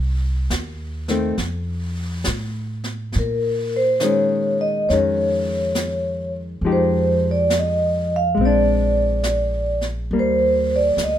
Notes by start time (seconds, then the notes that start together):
Already playing: C2
0.50 D#2, snare, hi-hat pedal
1.08 D#3 A3 C4, snare
1.38 F2, brush sweep, snare
2.24 A2, snare, hi-hat pedal
2.84 snare
3.12 A#2, brush sweep, snare
3.19 A#4
3.76 C5
4.00 D#3 C#5, snare, hi-hat pedal
4.04 G#3 C#4
4.61 D#5
4.89 F2 D#3 G#3 C#5, brush sweep, snare
4.94 C#4
5.75 snare, hi-hat pedal
6.61 F2 F3 G#3, brush sweep
6.66 D#4 G4
6.72 C5
7.31 D5
7.50 snare, hi-hat pedal
7.59 D#5
8.16 F5
8.35 A#1 G#3, brush sweep
8.41 C4
8.45 D4 D5
9.23 snare, hi-hat pedal
9.81 snare
10.11 D#2 G3 A#3, brush sweep
10.19 C5
10.76 D5
10.97 D2, snare, hi-hat pedal
11.04 D#5